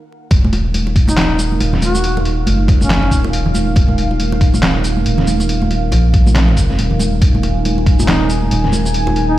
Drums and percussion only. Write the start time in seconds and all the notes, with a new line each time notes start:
0.31 kick, closed hi-hat, muted conga
0.44 high conga
0.53 closed hi-hat, muted conga
0.74 closed hi-hat, high conga
0.87 muted conga
0.96 kick, closed hi-hat
1.08 muted conga, high conga, shaker
1.17 snare, clap, closed hi-hat
1.39 closed hi-hat, muted conga, shaker
1.52 high conga
1.60 closed hi-hat, muted conga
1.73 snare, low conga
1.82 closed hi-hat, high conga, shaker
1.95 muted conga, shaker
2.04 closed hi-hat
2.17 muted conga, high conga
2.25 closed hi-hat
2.47 closed hi-hat, muted conga, high conga
2.68 kick, closed hi-hat, muted conga
2.81 high conga, shaker
2.90 snare, clap, closed hi-hat
3.03 muted conga
3.11 kick, closed hi-hat, shaker
3.24 muted conga, high conga
3.33 closed hi-hat
3.46 low conga
3.54 closed hi-hat, muted conga, high conga, shaker
3.76 kick, closed hi-hat, muted conga
3.88 high conga
3.98 closed hi-hat
4.11 muted conga
4.20 closed hi-hat, high conga
4.32 muted conga
4.41 kick, closed hi-hat
4.54 high conga, shaker
4.63 snare, clap, closed hi-hat, muted conga
4.84 closed hi-hat, muted conga, shaker
4.97 high conga
5.06 closed hi-hat
5.18 snare, muted conga, low conga
5.27 closed hi-hat, high conga, shaker
5.40 muted conga, shaker
5.49 closed hi-hat
5.62 high conga
5.71 closed hi-hat, muted conga
5.92 closed hi-hat, muted conga, high conga
6.14 kick, closed hi-hat
6.27 muted conga, high conga, shaker
6.35 snare, clap, closed hi-hat
6.48 muted conga
6.57 kick, closed hi-hat, shaker
6.70 snare, high conga
6.79 closed hi-hat, muted conga
6.91 low conga
7.00 closed hi-hat, muted conga, high conga, shaker
7.22 kick, closed hi-hat, muted conga
7.35 high conga
7.43 closed hi-hat, muted conga
7.65 closed hi-hat, high conga
7.78 muted conga
7.86 kick, closed hi-hat
8.00 muted conga, high conga, shaker
8.08 snare, clap, closed hi-hat
8.29 closed hi-hat, muted conga, shaker
8.42 high conga
8.51 closed hi-hat, muted conga
8.64 snare, low conga
8.72 closed hi-hat, high conga, shaker
8.86 muted conga, shaker
8.94 closed hi-hat
9.07 muted conga, high conga
9.16 closed hi-hat